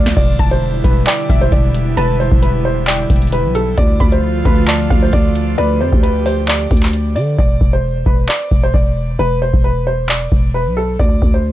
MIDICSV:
0, 0, Header, 1, 6, 480
1, 0, Start_track
1, 0, Tempo, 451128
1, 178, Time_signature, 4, 2, 24, 8
1, 12257, End_track
2, 0, Start_track
2, 0, Title_t, "Synth pluck"
2, 0, Program_c, 0, 84
2, 420, Note_on_c, 0, 81, 86
2, 1096, Note_off_c, 0, 81, 0
2, 1141, Note_on_c, 0, 79, 81
2, 1367, Note_off_c, 0, 79, 0
2, 1380, Note_on_c, 0, 76, 80
2, 2056, Note_off_c, 0, 76, 0
2, 2098, Note_on_c, 0, 81, 101
2, 2549, Note_off_c, 0, 81, 0
2, 3057, Note_on_c, 0, 79, 91
2, 3975, Note_off_c, 0, 79, 0
2, 4258, Note_on_c, 0, 83, 75
2, 4936, Note_off_c, 0, 83, 0
2, 4975, Note_on_c, 0, 81, 86
2, 5204, Note_off_c, 0, 81, 0
2, 5218, Note_on_c, 0, 77, 90
2, 5895, Note_off_c, 0, 77, 0
2, 5936, Note_on_c, 0, 74, 101
2, 6388, Note_off_c, 0, 74, 0
2, 12257, End_track
3, 0, Start_track
3, 0, Title_t, "Grand piano"
3, 0, Program_c, 1, 0
3, 0, Note_on_c, 1, 74, 81
3, 140, Note_off_c, 1, 74, 0
3, 177, Note_on_c, 1, 74, 99
3, 523, Note_off_c, 1, 74, 0
3, 546, Note_on_c, 1, 72, 83
3, 877, Note_off_c, 1, 72, 0
3, 895, Note_on_c, 1, 71, 80
3, 1100, Note_off_c, 1, 71, 0
3, 1137, Note_on_c, 1, 74, 100
3, 1483, Note_off_c, 1, 74, 0
3, 1505, Note_on_c, 1, 72, 87
3, 1601, Note_off_c, 1, 72, 0
3, 1618, Note_on_c, 1, 74, 82
3, 2069, Note_off_c, 1, 74, 0
3, 2099, Note_on_c, 1, 71, 115
3, 2303, Note_off_c, 1, 71, 0
3, 2340, Note_on_c, 1, 72, 84
3, 2543, Note_off_c, 1, 72, 0
3, 2579, Note_on_c, 1, 71, 89
3, 2783, Note_off_c, 1, 71, 0
3, 2820, Note_on_c, 1, 72, 80
3, 3023, Note_off_c, 1, 72, 0
3, 3059, Note_on_c, 1, 74, 86
3, 3510, Note_off_c, 1, 74, 0
3, 3538, Note_on_c, 1, 71, 84
3, 3742, Note_off_c, 1, 71, 0
3, 3777, Note_on_c, 1, 69, 85
3, 3981, Note_off_c, 1, 69, 0
3, 4018, Note_on_c, 1, 74, 97
3, 4363, Note_off_c, 1, 74, 0
3, 4386, Note_on_c, 1, 72, 66
3, 4717, Note_off_c, 1, 72, 0
3, 4739, Note_on_c, 1, 71, 83
3, 4942, Note_off_c, 1, 71, 0
3, 4980, Note_on_c, 1, 74, 80
3, 5324, Note_off_c, 1, 74, 0
3, 5347, Note_on_c, 1, 72, 73
3, 5442, Note_off_c, 1, 72, 0
3, 5460, Note_on_c, 1, 74, 92
3, 5910, Note_off_c, 1, 74, 0
3, 5941, Note_on_c, 1, 71, 110
3, 6144, Note_off_c, 1, 71, 0
3, 6177, Note_on_c, 1, 72, 79
3, 6382, Note_off_c, 1, 72, 0
3, 6415, Note_on_c, 1, 71, 87
3, 6620, Note_off_c, 1, 71, 0
3, 6659, Note_on_c, 1, 72, 87
3, 6862, Note_off_c, 1, 72, 0
3, 6897, Note_on_c, 1, 74, 90
3, 7575, Note_off_c, 1, 74, 0
3, 7614, Note_on_c, 1, 74, 80
3, 7820, Note_off_c, 1, 74, 0
3, 7857, Note_on_c, 1, 74, 95
3, 8203, Note_off_c, 1, 74, 0
3, 8227, Note_on_c, 1, 72, 81
3, 8558, Note_off_c, 1, 72, 0
3, 8577, Note_on_c, 1, 71, 78
3, 8781, Note_off_c, 1, 71, 0
3, 8818, Note_on_c, 1, 74, 97
3, 9163, Note_off_c, 1, 74, 0
3, 9188, Note_on_c, 1, 72, 84
3, 9282, Note_off_c, 1, 72, 0
3, 9299, Note_on_c, 1, 74, 84
3, 9750, Note_off_c, 1, 74, 0
3, 9781, Note_on_c, 1, 71, 111
3, 9984, Note_off_c, 1, 71, 0
3, 10021, Note_on_c, 1, 72, 83
3, 10224, Note_off_c, 1, 72, 0
3, 10259, Note_on_c, 1, 71, 88
3, 10462, Note_off_c, 1, 71, 0
3, 10500, Note_on_c, 1, 72, 78
3, 10703, Note_off_c, 1, 72, 0
3, 10740, Note_on_c, 1, 74, 81
3, 11190, Note_off_c, 1, 74, 0
3, 11218, Note_on_c, 1, 71, 83
3, 11422, Note_off_c, 1, 71, 0
3, 11457, Note_on_c, 1, 69, 82
3, 11662, Note_off_c, 1, 69, 0
3, 11697, Note_on_c, 1, 74, 91
3, 12043, Note_off_c, 1, 74, 0
3, 12066, Note_on_c, 1, 72, 66
3, 12257, Note_off_c, 1, 72, 0
3, 12257, End_track
4, 0, Start_track
4, 0, Title_t, "Analog synth pad"
4, 0, Program_c, 2, 89
4, 0, Note_on_c, 2, 50, 85
4, 0, Note_on_c, 2, 53, 80
4, 0, Note_on_c, 2, 57, 78
4, 0, Note_on_c, 2, 65, 97
4, 136, Note_off_c, 2, 57, 0
4, 140, Note_off_c, 2, 53, 0
4, 140, Note_off_c, 2, 65, 0
4, 177, Note_on_c, 2, 55, 77
4, 177, Note_on_c, 2, 64, 95
4, 178, Note_on_c, 2, 47, 81
4, 3975, Note_off_c, 2, 50, 0
4, 3979, Note_off_c, 2, 55, 0
4, 3979, Note_off_c, 2, 64, 0
4, 3980, Note_off_c, 2, 47, 0
4, 4017, Note_on_c, 2, 53, 78
4, 4017, Note_on_c, 2, 57, 76
4, 4018, Note_on_c, 2, 50, 86
4, 4018, Note_on_c, 2, 65, 95
4, 5919, Note_off_c, 2, 65, 0
4, 5939, Note_on_c, 2, 67, 99
4, 7819, Note_off_c, 2, 50, 0
4, 7819, Note_off_c, 2, 53, 0
4, 7819, Note_off_c, 2, 57, 0
4, 7839, Note_off_c, 2, 67, 0
4, 12257, End_track
5, 0, Start_track
5, 0, Title_t, "808-style bass"
5, 0, Program_c, 3, 38
5, 0, Note_on_c, 3, 38, 108
5, 159, Note_off_c, 3, 38, 0
5, 178, Note_on_c, 3, 28, 111
5, 408, Note_off_c, 3, 28, 0
5, 416, Note_on_c, 3, 28, 107
5, 878, Note_off_c, 3, 28, 0
5, 897, Note_on_c, 3, 28, 107
5, 1128, Note_off_c, 3, 28, 0
5, 1378, Note_on_c, 3, 28, 107
5, 1608, Note_off_c, 3, 28, 0
5, 1618, Note_on_c, 3, 28, 105
5, 2079, Note_off_c, 3, 28, 0
5, 2098, Note_on_c, 3, 28, 112
5, 2450, Note_off_c, 3, 28, 0
5, 2464, Note_on_c, 3, 28, 105
5, 3264, Note_off_c, 3, 28, 0
5, 3298, Note_on_c, 3, 28, 105
5, 3666, Note_on_c, 3, 35, 97
5, 3682, Note_off_c, 3, 28, 0
5, 4001, Note_off_c, 3, 35, 0
5, 4018, Note_on_c, 3, 38, 113
5, 4248, Note_off_c, 3, 38, 0
5, 4257, Note_on_c, 3, 38, 105
5, 4718, Note_off_c, 3, 38, 0
5, 4737, Note_on_c, 3, 38, 107
5, 5198, Note_off_c, 3, 38, 0
5, 5218, Note_on_c, 3, 38, 101
5, 5448, Note_off_c, 3, 38, 0
5, 5458, Note_on_c, 3, 38, 109
5, 5919, Note_off_c, 3, 38, 0
5, 5939, Note_on_c, 3, 38, 102
5, 6179, Note_on_c, 3, 41, 99
5, 6195, Note_off_c, 3, 38, 0
5, 6299, Note_off_c, 3, 41, 0
5, 6305, Note_on_c, 3, 38, 100
5, 7105, Note_off_c, 3, 38, 0
5, 7138, Note_on_c, 3, 38, 105
5, 7618, Note_on_c, 3, 50, 103
5, 7634, Note_off_c, 3, 38, 0
5, 7846, Note_off_c, 3, 50, 0
5, 7858, Note_on_c, 3, 28, 109
5, 8088, Note_off_c, 3, 28, 0
5, 8097, Note_on_c, 3, 28, 108
5, 8558, Note_off_c, 3, 28, 0
5, 8578, Note_on_c, 3, 28, 107
5, 8808, Note_off_c, 3, 28, 0
5, 9058, Note_on_c, 3, 28, 104
5, 9289, Note_off_c, 3, 28, 0
5, 9298, Note_on_c, 3, 28, 105
5, 9759, Note_off_c, 3, 28, 0
5, 9779, Note_on_c, 3, 28, 111
5, 10131, Note_off_c, 3, 28, 0
5, 10145, Note_on_c, 3, 28, 103
5, 10945, Note_off_c, 3, 28, 0
5, 10978, Note_on_c, 3, 28, 103
5, 11346, Note_on_c, 3, 35, 98
5, 11362, Note_off_c, 3, 28, 0
5, 11681, Note_off_c, 3, 35, 0
5, 11699, Note_on_c, 3, 38, 109
5, 11929, Note_off_c, 3, 38, 0
5, 11937, Note_on_c, 3, 38, 104
5, 12257, Note_off_c, 3, 38, 0
5, 12257, End_track
6, 0, Start_track
6, 0, Title_t, "Drums"
6, 65, Note_on_c, 9, 38, 99
6, 172, Note_off_c, 9, 38, 0
6, 178, Note_on_c, 9, 36, 117
6, 178, Note_on_c, 9, 49, 83
6, 284, Note_off_c, 9, 36, 0
6, 284, Note_off_c, 9, 49, 0
6, 417, Note_on_c, 9, 36, 88
6, 418, Note_on_c, 9, 42, 88
6, 523, Note_off_c, 9, 36, 0
6, 524, Note_off_c, 9, 42, 0
6, 545, Note_on_c, 9, 42, 52
6, 651, Note_off_c, 9, 42, 0
6, 897, Note_on_c, 9, 36, 95
6, 898, Note_on_c, 9, 42, 91
6, 1004, Note_off_c, 9, 36, 0
6, 1004, Note_off_c, 9, 42, 0
6, 1134, Note_on_c, 9, 42, 68
6, 1137, Note_on_c, 9, 39, 121
6, 1240, Note_off_c, 9, 42, 0
6, 1243, Note_off_c, 9, 39, 0
6, 1378, Note_on_c, 9, 36, 97
6, 1382, Note_on_c, 9, 42, 73
6, 1484, Note_off_c, 9, 36, 0
6, 1488, Note_off_c, 9, 42, 0
6, 1617, Note_on_c, 9, 42, 83
6, 1618, Note_on_c, 9, 36, 97
6, 1723, Note_off_c, 9, 42, 0
6, 1724, Note_off_c, 9, 36, 0
6, 1857, Note_on_c, 9, 42, 82
6, 1963, Note_off_c, 9, 42, 0
6, 2098, Note_on_c, 9, 42, 86
6, 2204, Note_off_c, 9, 42, 0
6, 2465, Note_on_c, 9, 36, 105
6, 2571, Note_off_c, 9, 36, 0
6, 2581, Note_on_c, 9, 42, 86
6, 2688, Note_off_c, 9, 42, 0
6, 3053, Note_on_c, 9, 42, 70
6, 3056, Note_on_c, 9, 39, 119
6, 3160, Note_off_c, 9, 42, 0
6, 3163, Note_off_c, 9, 39, 0
6, 3298, Note_on_c, 9, 36, 96
6, 3298, Note_on_c, 9, 42, 75
6, 3362, Note_off_c, 9, 42, 0
6, 3362, Note_on_c, 9, 42, 64
6, 3404, Note_off_c, 9, 36, 0
6, 3425, Note_off_c, 9, 42, 0
6, 3425, Note_on_c, 9, 42, 52
6, 3482, Note_off_c, 9, 42, 0
6, 3482, Note_on_c, 9, 42, 42
6, 3537, Note_off_c, 9, 42, 0
6, 3537, Note_on_c, 9, 42, 84
6, 3643, Note_off_c, 9, 42, 0
6, 3777, Note_on_c, 9, 42, 81
6, 3883, Note_off_c, 9, 42, 0
6, 4018, Note_on_c, 9, 36, 127
6, 4018, Note_on_c, 9, 42, 86
6, 4124, Note_off_c, 9, 36, 0
6, 4124, Note_off_c, 9, 42, 0
6, 4257, Note_on_c, 9, 36, 89
6, 4258, Note_on_c, 9, 42, 88
6, 4363, Note_off_c, 9, 36, 0
6, 4364, Note_off_c, 9, 42, 0
6, 4385, Note_on_c, 9, 42, 52
6, 4492, Note_off_c, 9, 42, 0
6, 4737, Note_on_c, 9, 36, 95
6, 4738, Note_on_c, 9, 42, 90
6, 4844, Note_off_c, 9, 36, 0
6, 4844, Note_off_c, 9, 42, 0
6, 4973, Note_on_c, 9, 42, 71
6, 4976, Note_on_c, 9, 39, 120
6, 5080, Note_off_c, 9, 42, 0
6, 5083, Note_off_c, 9, 39, 0
6, 5218, Note_on_c, 9, 36, 98
6, 5221, Note_on_c, 9, 42, 76
6, 5324, Note_off_c, 9, 36, 0
6, 5328, Note_off_c, 9, 42, 0
6, 5457, Note_on_c, 9, 42, 81
6, 5458, Note_on_c, 9, 36, 103
6, 5564, Note_off_c, 9, 36, 0
6, 5564, Note_off_c, 9, 42, 0
6, 5697, Note_on_c, 9, 42, 83
6, 5803, Note_off_c, 9, 42, 0
6, 5938, Note_on_c, 9, 42, 84
6, 6044, Note_off_c, 9, 42, 0
6, 6305, Note_on_c, 9, 36, 104
6, 6411, Note_off_c, 9, 36, 0
6, 6422, Note_on_c, 9, 42, 84
6, 6528, Note_off_c, 9, 42, 0
6, 6659, Note_on_c, 9, 46, 63
6, 6765, Note_off_c, 9, 46, 0
6, 6894, Note_on_c, 9, 42, 69
6, 6897, Note_on_c, 9, 39, 126
6, 7000, Note_off_c, 9, 42, 0
6, 7003, Note_off_c, 9, 39, 0
6, 7138, Note_on_c, 9, 36, 99
6, 7138, Note_on_c, 9, 42, 61
6, 7202, Note_off_c, 9, 42, 0
6, 7202, Note_on_c, 9, 42, 62
6, 7245, Note_off_c, 9, 36, 0
6, 7265, Note_off_c, 9, 42, 0
6, 7265, Note_on_c, 9, 39, 65
6, 7265, Note_on_c, 9, 42, 59
6, 7322, Note_off_c, 9, 42, 0
6, 7322, Note_on_c, 9, 42, 59
6, 7372, Note_off_c, 9, 39, 0
6, 7377, Note_off_c, 9, 42, 0
6, 7377, Note_on_c, 9, 42, 81
6, 7484, Note_off_c, 9, 42, 0
6, 7617, Note_on_c, 9, 46, 58
6, 7723, Note_off_c, 9, 46, 0
6, 7858, Note_on_c, 9, 36, 119
6, 7965, Note_off_c, 9, 36, 0
6, 8097, Note_on_c, 9, 36, 91
6, 8203, Note_off_c, 9, 36, 0
6, 8578, Note_on_c, 9, 36, 91
6, 8684, Note_off_c, 9, 36, 0
6, 8817, Note_on_c, 9, 39, 119
6, 8924, Note_off_c, 9, 39, 0
6, 9058, Note_on_c, 9, 36, 96
6, 9165, Note_off_c, 9, 36, 0
6, 9298, Note_on_c, 9, 36, 100
6, 9405, Note_off_c, 9, 36, 0
6, 10145, Note_on_c, 9, 36, 98
6, 10251, Note_off_c, 9, 36, 0
6, 10737, Note_on_c, 9, 39, 122
6, 10843, Note_off_c, 9, 39, 0
6, 10978, Note_on_c, 9, 36, 96
6, 11084, Note_off_c, 9, 36, 0
6, 11698, Note_on_c, 9, 36, 117
6, 11805, Note_off_c, 9, 36, 0
6, 11937, Note_on_c, 9, 36, 92
6, 12044, Note_off_c, 9, 36, 0
6, 12257, End_track
0, 0, End_of_file